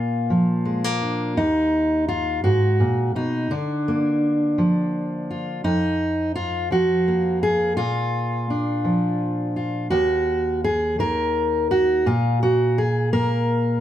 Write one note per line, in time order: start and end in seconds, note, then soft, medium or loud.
0.00 1.37 A#2 medium
0.00 0.83 A#3 soft
0.00 1.33 F4 medium
0.30 1.33 F3 medium
0.65 0.84 G#3 soft
0.84 1.38 A#3 soft
1.02 1.33 D4 soft
1.37 2.44 D#2 medium
1.37 2.08 D#4 medium
2.08 2.43 F4 medium
2.44 2.80 G#2 medium
2.44 3.15 F#4 medium
2.80 3.15 A#2 medium
3.15 3.51 B2 soft
3.15 3.51 D#4 medium
3.51 5.60 D3 medium
3.51 5.64 D4 medium
3.88 5.60 A#3 soft
4.58 5.67 F3 medium
5.31 5.64 F4 soft
5.64 7.73 F2 medium
5.64 6.35 D#4 medium
6.35 6.70 F4 medium
6.71 7.73 F3 medium
6.71 7.42 F#4 medium
7.08 8.50 A#3 soft
7.43 7.76 G#4 loud
7.77 9.92 A#2 medium
7.77 9.55 F4 medium
8.50 9.88 D4 soft
8.84 9.87 F3 soft
9.56 9.87 F4 soft
9.90 12.05 D#2 medium
9.90 10.62 F#4 medium
10.64 10.99 G#4 medium
10.99 12.06 D#3 medium
10.99 11.70 A#4 medium
11.71 12.06 F#4 loud
12.06 13.80 A#2 medium
12.06 12.42 F4 medium
12.43 12.77 F#4 medium
12.78 13.12 G#4 medium
13.13 13.80 A#3 medium
13.13 13.80 A#4 loud